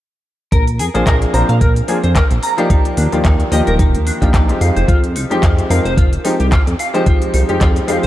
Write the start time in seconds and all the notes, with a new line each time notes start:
0.52 A#1 A#4, kick, closed hi-hat
0.67 closed hi-hat
0.79 F2 G#4, open hi-hat
0.94 A#1 F3 A#3 C4 D4 G#4 C5, closed hi-hat
1.07 A#1 A#4, kick, clap, closed hi-hat
1.22 closed hi-hat
1.33 A#1 F3 A#3 C4 D4 C5 A#5, open hi-hat
1.49 A#2 F5, closed hi-hat
1.61 A#4, kick, closed hi-hat
1.76 closed hi-hat
1.88 F3 A#3 C4 D4 G#4, open hi-hat
2.04 F2 C5, closed hi-hat
2.16 A#4, kick, clap, closed hi-hat
2.31 A#1, closed hi-hat
2.43 A#5, open hi-hat
2.58 F3 A#3 D#4 G4 D5 F5, closed hi-hat
2.70 D#4, kick, closed hi-hat
2.85 closed hi-hat
2.97 D#2 D4, open hi-hat
3.12 D#2 D#3 F3 A#3 F4 G4 D5, closed hi-hat
3.25 D#2 D#4, kick, clap, closed hi-hat
3.40 closed hi-hat
3.51 D#2 D#3 F3 A#3 G4 D#5, open hi-hat
3.67 D#1 A#4, closed hi-hat
3.79 D#4, kick, closed hi-hat
3.95 D#2, closed hi-hat
4.07 D4, open hi-hat
4.21 A#1 F3 A#3 D4 D#4 F4 G4, kick, clap, closed hi-hat
4.34 D#4, kick, clap, closed hi-hat
4.48 F3 G#3 C4 D#4 G4, closed hi-hat
4.61 F2 F5, open hi-hat
4.76 F1 C5, closed hi-hat
4.88 F2 F4, kick, closed hi-hat
5.04 closed hi-hat
5.15 C2 D#4, open hi-hat
5.30 F2 F3 G#3 C4 D#4 G4, closed hi-hat
5.43 F2 F4, kick, clap, closed hi-hat
5.59 closed hi-hat
5.70 F2 F3 G#3 C4 D#4 A#4 F5, open hi-hat
5.85 F1 C5, closed hi-hat
5.97 F4, kick, closed hi-hat
6.13 closed hi-hat
6.24 F3 G#3 C4 D#4 G4, open hi-hat
6.40 C2 G4, closed hi-hat
6.52 F4, kick, clap, closed hi-hat
6.67 F2, closed hi-hat
6.79 F5, open hi-hat
6.94 F3 G#3 C4 D#4 G4 C5, closed hi-hat
7.06 F4, kick, closed hi-hat
7.22 closed hi-hat
7.34 C2 D#4, open hi-hat
7.48 F2 F3 G#3 C4 D#4 G4, closed hi-hat
7.61 F2 F4, kick, clap, closed hi-hat
7.76 closed hi-hat
7.87 F2 F3 G#3 C4 D#4 G4 F5, open hi-hat
8.03 F1 C5, closed hi-hat